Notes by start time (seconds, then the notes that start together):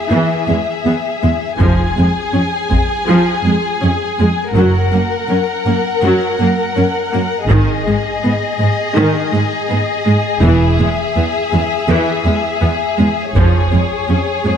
Already playing: G#4 E5
0.11 E2 E3
0.48 E2 G#3
0.85 E2 B3
1.23 E2 G#3
1.59 F1 F2 F3 G#4 G#5, taiko
1.97 F2 G#3
2.34 F2 C#4
2.70 F2 G#3, taiko
3.07 F2 F3
3.45 F2 G#3
3.82 F2 C#4
4.19 F2 G#3
4.54 F#1 F#2 F#3 A#4 F#5
4.92 F#2 A#3
5.29 F#2 C#4
5.66 F#2 A#3
6.02 F#2 F#3
6.40 F#2 A#3
6.77 F#2 C#4
7.13 F#2 A#3
7.49 G#1 G#2 D#3 G#4 D#5, taiko
7.87 G#2 G#3
8.24 G#2 B3
8.60 G#2 G#3
8.96 G#2 D#3
9.33 G#2 G#3
9.70 G#2 B3
10.05 G#2 G#3
10.42 E1 E2 E3 E5
10.80 E2 G#3
11.16 E2 B3
11.52 E2 G#3
11.89 E2 E3
12.26 E2 G#3
12.61 E2 B3
12.98 E2 G#3
13.35 F1 F2 F3 G#4 C#5, taiko
13.73 F2 G#3
14.08 F2 C#4
14.45 F2 G#3